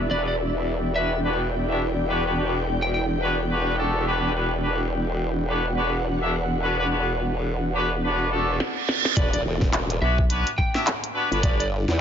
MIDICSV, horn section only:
0, 0, Header, 1, 2, 480
1, 0, Start_track
1, 0, Key_signature, 1, "minor"
1, 0, Tempo, 566038
1, 95, Time_signature, 4, 2, 24, 8
1, 10184, End_track
2, 0, Start_track
2, 0, Title_t, "Horn section"
2, 0, Program_c, 0, 61
2, 94, Note_on_c, 0, 62, 70
2, 94, Note_on_c, 0, 67, 63
2, 95, Note_on_c, 0, 59, 73
2, 95, Note_on_c, 0, 66, 62
2, 95, Note_on_c, 0, 71, 80
2, 239, Note_off_c, 0, 59, 0
2, 239, Note_off_c, 0, 62, 0
2, 239, Note_off_c, 0, 66, 0
2, 239, Note_off_c, 0, 67, 0
2, 239, Note_off_c, 0, 71, 0
2, 813, Note_on_c, 0, 59, 76
2, 813, Note_on_c, 0, 62, 72
2, 813, Note_on_c, 0, 66, 69
2, 813, Note_on_c, 0, 67, 68
2, 813, Note_on_c, 0, 71, 83
2, 958, Note_off_c, 0, 59, 0
2, 958, Note_off_c, 0, 62, 0
2, 958, Note_off_c, 0, 66, 0
2, 958, Note_off_c, 0, 67, 0
2, 958, Note_off_c, 0, 71, 0
2, 1052, Note_on_c, 0, 59, 88
2, 1052, Note_on_c, 0, 62, 86
2, 1052, Note_on_c, 0, 66, 80
2, 1052, Note_on_c, 0, 71, 95
2, 1053, Note_on_c, 0, 67, 78
2, 1198, Note_off_c, 0, 59, 0
2, 1198, Note_off_c, 0, 62, 0
2, 1198, Note_off_c, 0, 66, 0
2, 1198, Note_off_c, 0, 67, 0
2, 1198, Note_off_c, 0, 71, 0
2, 1433, Note_on_c, 0, 62, 80
2, 1434, Note_on_c, 0, 64, 77
2, 1434, Note_on_c, 0, 66, 67
2, 1434, Note_on_c, 0, 67, 70
2, 1434, Note_on_c, 0, 76, 84
2, 1536, Note_off_c, 0, 62, 0
2, 1536, Note_off_c, 0, 64, 0
2, 1536, Note_off_c, 0, 66, 0
2, 1536, Note_off_c, 0, 67, 0
2, 1536, Note_off_c, 0, 76, 0
2, 1771, Note_on_c, 0, 59, 84
2, 1771, Note_on_c, 0, 71, 92
2, 1772, Note_on_c, 0, 62, 81
2, 1772, Note_on_c, 0, 66, 77
2, 1772, Note_on_c, 0, 67, 79
2, 1894, Note_off_c, 0, 59, 0
2, 1894, Note_off_c, 0, 62, 0
2, 1894, Note_off_c, 0, 66, 0
2, 1894, Note_off_c, 0, 67, 0
2, 1894, Note_off_c, 0, 71, 0
2, 1915, Note_on_c, 0, 59, 83
2, 1915, Note_on_c, 0, 66, 75
2, 1915, Note_on_c, 0, 71, 91
2, 1916, Note_on_c, 0, 62, 80
2, 1916, Note_on_c, 0, 67, 70
2, 1999, Note_off_c, 0, 59, 0
2, 1999, Note_off_c, 0, 62, 0
2, 1999, Note_off_c, 0, 66, 0
2, 1999, Note_off_c, 0, 67, 0
2, 1999, Note_off_c, 0, 71, 0
2, 2013, Note_on_c, 0, 59, 75
2, 2013, Note_on_c, 0, 62, 80
2, 2013, Note_on_c, 0, 66, 70
2, 2013, Note_on_c, 0, 67, 68
2, 2013, Note_on_c, 0, 71, 82
2, 2158, Note_off_c, 0, 59, 0
2, 2158, Note_off_c, 0, 62, 0
2, 2158, Note_off_c, 0, 66, 0
2, 2158, Note_off_c, 0, 67, 0
2, 2158, Note_off_c, 0, 71, 0
2, 2733, Note_on_c, 0, 59, 93
2, 2733, Note_on_c, 0, 62, 88
2, 2733, Note_on_c, 0, 66, 83
2, 2733, Note_on_c, 0, 67, 82
2, 2733, Note_on_c, 0, 71, 101
2, 2878, Note_off_c, 0, 59, 0
2, 2878, Note_off_c, 0, 62, 0
2, 2878, Note_off_c, 0, 66, 0
2, 2878, Note_off_c, 0, 71, 0
2, 2879, Note_off_c, 0, 67, 0
2, 2971, Note_on_c, 0, 59, 85
2, 2971, Note_on_c, 0, 62, 81
2, 2971, Note_on_c, 0, 66, 80
2, 2971, Note_on_c, 0, 67, 78
2, 2971, Note_on_c, 0, 71, 92
2, 3189, Note_off_c, 0, 59, 0
2, 3189, Note_off_c, 0, 66, 0
2, 3189, Note_off_c, 0, 71, 0
2, 3190, Note_off_c, 0, 62, 0
2, 3190, Note_off_c, 0, 67, 0
2, 3211, Note_on_c, 0, 57, 84
2, 3211, Note_on_c, 0, 69, 91
2, 3212, Note_on_c, 0, 62, 85
2, 3212, Note_on_c, 0, 66, 79
2, 3212, Note_on_c, 0, 67, 78
2, 3430, Note_off_c, 0, 57, 0
2, 3430, Note_off_c, 0, 62, 0
2, 3430, Note_off_c, 0, 66, 0
2, 3430, Note_off_c, 0, 67, 0
2, 3430, Note_off_c, 0, 69, 0
2, 3452, Note_on_c, 0, 62, 97
2, 3453, Note_on_c, 0, 59, 94
2, 3453, Note_on_c, 0, 66, 85
2, 3453, Note_on_c, 0, 67, 90
2, 3453, Note_on_c, 0, 71, 102
2, 3658, Note_off_c, 0, 59, 0
2, 3658, Note_off_c, 0, 62, 0
2, 3658, Note_off_c, 0, 66, 0
2, 3658, Note_off_c, 0, 67, 0
2, 3658, Note_off_c, 0, 71, 0
2, 3691, Note_on_c, 0, 59, 75
2, 3691, Note_on_c, 0, 71, 82
2, 3692, Note_on_c, 0, 62, 76
2, 3692, Note_on_c, 0, 66, 67
2, 3692, Note_on_c, 0, 67, 69
2, 3838, Note_off_c, 0, 59, 0
2, 3838, Note_off_c, 0, 62, 0
2, 3838, Note_off_c, 0, 66, 0
2, 3838, Note_off_c, 0, 67, 0
2, 3838, Note_off_c, 0, 71, 0
2, 3931, Note_on_c, 0, 62, 69
2, 3932, Note_on_c, 0, 59, 70
2, 3932, Note_on_c, 0, 66, 65
2, 3932, Note_on_c, 0, 67, 67
2, 3932, Note_on_c, 0, 71, 76
2, 4077, Note_off_c, 0, 62, 0
2, 4078, Note_off_c, 0, 59, 0
2, 4078, Note_off_c, 0, 66, 0
2, 4078, Note_off_c, 0, 67, 0
2, 4078, Note_off_c, 0, 71, 0
2, 4650, Note_on_c, 0, 62, 79
2, 4650, Note_on_c, 0, 67, 71
2, 4651, Note_on_c, 0, 59, 78
2, 4651, Note_on_c, 0, 66, 70
2, 4651, Note_on_c, 0, 71, 85
2, 4797, Note_off_c, 0, 59, 0
2, 4797, Note_off_c, 0, 62, 0
2, 4797, Note_off_c, 0, 66, 0
2, 4797, Note_off_c, 0, 67, 0
2, 4797, Note_off_c, 0, 71, 0
2, 4891, Note_on_c, 0, 66, 79
2, 4891, Note_on_c, 0, 67, 85
2, 4892, Note_on_c, 0, 59, 87
2, 4892, Note_on_c, 0, 62, 89
2, 4892, Note_on_c, 0, 71, 94
2, 5037, Note_off_c, 0, 67, 0
2, 5038, Note_off_c, 0, 59, 0
2, 5038, Note_off_c, 0, 62, 0
2, 5038, Note_off_c, 0, 66, 0
2, 5038, Note_off_c, 0, 71, 0
2, 5276, Note_on_c, 0, 62, 79
2, 5276, Note_on_c, 0, 64, 80
2, 5276, Note_on_c, 0, 66, 69
2, 5276, Note_on_c, 0, 76, 86
2, 5277, Note_on_c, 0, 67, 74
2, 5377, Note_off_c, 0, 62, 0
2, 5377, Note_off_c, 0, 64, 0
2, 5377, Note_off_c, 0, 66, 0
2, 5377, Note_off_c, 0, 76, 0
2, 5378, Note_off_c, 0, 67, 0
2, 5614, Note_on_c, 0, 59, 86
2, 5614, Note_on_c, 0, 62, 87
2, 5614, Note_on_c, 0, 67, 76
2, 5614, Note_on_c, 0, 71, 94
2, 5615, Note_on_c, 0, 66, 76
2, 5736, Note_off_c, 0, 59, 0
2, 5736, Note_off_c, 0, 62, 0
2, 5736, Note_off_c, 0, 66, 0
2, 5736, Note_off_c, 0, 67, 0
2, 5736, Note_off_c, 0, 71, 0
2, 5756, Note_on_c, 0, 62, 83
2, 5756, Note_on_c, 0, 66, 76
2, 5757, Note_on_c, 0, 59, 87
2, 5757, Note_on_c, 0, 67, 73
2, 5757, Note_on_c, 0, 71, 94
2, 5839, Note_off_c, 0, 62, 0
2, 5840, Note_off_c, 0, 59, 0
2, 5840, Note_off_c, 0, 66, 0
2, 5840, Note_off_c, 0, 67, 0
2, 5840, Note_off_c, 0, 71, 0
2, 5853, Note_on_c, 0, 59, 77
2, 5853, Note_on_c, 0, 62, 77
2, 5853, Note_on_c, 0, 66, 70
2, 5853, Note_on_c, 0, 67, 68
2, 5853, Note_on_c, 0, 71, 83
2, 5998, Note_off_c, 0, 59, 0
2, 5998, Note_off_c, 0, 62, 0
2, 5998, Note_off_c, 0, 66, 0
2, 5998, Note_off_c, 0, 67, 0
2, 5998, Note_off_c, 0, 71, 0
2, 6572, Note_on_c, 0, 59, 94
2, 6572, Note_on_c, 0, 62, 91
2, 6572, Note_on_c, 0, 66, 85
2, 6572, Note_on_c, 0, 67, 88
2, 6572, Note_on_c, 0, 71, 102
2, 6718, Note_off_c, 0, 59, 0
2, 6718, Note_off_c, 0, 62, 0
2, 6718, Note_off_c, 0, 66, 0
2, 6718, Note_off_c, 0, 67, 0
2, 6718, Note_off_c, 0, 71, 0
2, 6812, Note_on_c, 0, 59, 85
2, 6812, Note_on_c, 0, 62, 88
2, 6812, Note_on_c, 0, 66, 77
2, 6812, Note_on_c, 0, 67, 80
2, 6812, Note_on_c, 0, 71, 93
2, 7030, Note_off_c, 0, 59, 0
2, 7030, Note_off_c, 0, 62, 0
2, 7030, Note_off_c, 0, 66, 0
2, 7030, Note_off_c, 0, 67, 0
2, 7030, Note_off_c, 0, 71, 0
2, 7053, Note_on_c, 0, 57, 83
2, 7053, Note_on_c, 0, 66, 74
2, 7053, Note_on_c, 0, 69, 91
2, 7054, Note_on_c, 0, 62, 86
2, 7054, Note_on_c, 0, 67, 79
2, 7271, Note_off_c, 0, 57, 0
2, 7271, Note_off_c, 0, 62, 0
2, 7271, Note_off_c, 0, 66, 0
2, 7271, Note_off_c, 0, 67, 0
2, 7271, Note_off_c, 0, 69, 0
2, 7772, Note_on_c, 0, 59, 78
2, 7772, Note_on_c, 0, 62, 78
2, 7772, Note_on_c, 0, 67, 70
2, 7772, Note_on_c, 0, 71, 85
2, 7773, Note_on_c, 0, 66, 69
2, 7918, Note_off_c, 0, 59, 0
2, 7918, Note_off_c, 0, 62, 0
2, 7918, Note_off_c, 0, 66, 0
2, 7918, Note_off_c, 0, 67, 0
2, 7918, Note_off_c, 0, 71, 0
2, 8492, Note_on_c, 0, 66, 75
2, 8492, Note_on_c, 0, 67, 75
2, 8493, Note_on_c, 0, 59, 82
2, 8493, Note_on_c, 0, 62, 81
2, 8493, Note_on_c, 0, 71, 89
2, 8638, Note_off_c, 0, 59, 0
2, 8638, Note_off_c, 0, 62, 0
2, 8638, Note_off_c, 0, 66, 0
2, 8638, Note_off_c, 0, 67, 0
2, 8638, Note_off_c, 0, 71, 0
2, 8732, Note_on_c, 0, 66, 83
2, 8732, Note_on_c, 0, 67, 86
2, 8733, Note_on_c, 0, 59, 88
2, 8733, Note_on_c, 0, 62, 90
2, 8733, Note_on_c, 0, 71, 96
2, 8878, Note_off_c, 0, 59, 0
2, 8878, Note_off_c, 0, 62, 0
2, 8878, Note_off_c, 0, 66, 0
2, 8878, Note_off_c, 0, 67, 0
2, 8878, Note_off_c, 0, 71, 0
2, 9113, Note_on_c, 0, 62, 78
2, 9113, Note_on_c, 0, 64, 86
2, 9113, Note_on_c, 0, 66, 75
2, 9113, Note_on_c, 0, 76, 94
2, 9114, Note_on_c, 0, 67, 77
2, 9216, Note_off_c, 0, 62, 0
2, 9216, Note_off_c, 0, 64, 0
2, 9216, Note_off_c, 0, 66, 0
2, 9216, Note_off_c, 0, 67, 0
2, 9216, Note_off_c, 0, 76, 0
2, 9450, Note_on_c, 0, 59, 88
2, 9450, Note_on_c, 0, 62, 92
2, 9450, Note_on_c, 0, 66, 78
2, 9450, Note_on_c, 0, 67, 80
2, 9450, Note_on_c, 0, 71, 96
2, 9573, Note_off_c, 0, 62, 0
2, 9574, Note_off_c, 0, 59, 0
2, 9574, Note_off_c, 0, 66, 0
2, 9574, Note_off_c, 0, 67, 0
2, 9574, Note_off_c, 0, 71, 0
2, 9593, Note_on_c, 0, 59, 88
2, 9593, Note_on_c, 0, 66, 81
2, 9593, Note_on_c, 0, 67, 81
2, 9593, Note_on_c, 0, 71, 96
2, 9594, Note_on_c, 0, 62, 86
2, 9678, Note_off_c, 0, 59, 0
2, 9678, Note_off_c, 0, 62, 0
2, 9678, Note_off_c, 0, 66, 0
2, 9678, Note_off_c, 0, 67, 0
2, 9678, Note_off_c, 0, 71, 0
2, 9691, Note_on_c, 0, 62, 80
2, 9691, Note_on_c, 0, 67, 74
2, 9692, Note_on_c, 0, 59, 82
2, 9692, Note_on_c, 0, 71, 89
2, 9693, Note_on_c, 0, 66, 72
2, 9837, Note_off_c, 0, 62, 0
2, 9838, Note_off_c, 0, 59, 0
2, 9838, Note_off_c, 0, 66, 0
2, 9838, Note_off_c, 0, 67, 0
2, 9838, Note_off_c, 0, 71, 0
2, 10184, End_track
0, 0, End_of_file